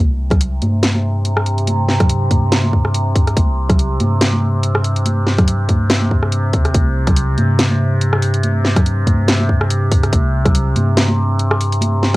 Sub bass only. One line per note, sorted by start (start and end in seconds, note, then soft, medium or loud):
0.00 0.61 C2 loud
0.62 2.30 G2 medium
2.31 3.35 G2 medium
3.37 3.99 C2 medium
4.00 5.68 G2 medium
5.69 6.55 G2 medium
6.53 6.73 D#2 medium
6.75 7.37 C2 loud
7.38 9.06 G2 medium
9.07 10.11 G2 medium
10.12 10.75 C2 loud
10.76 12.16 G2 medium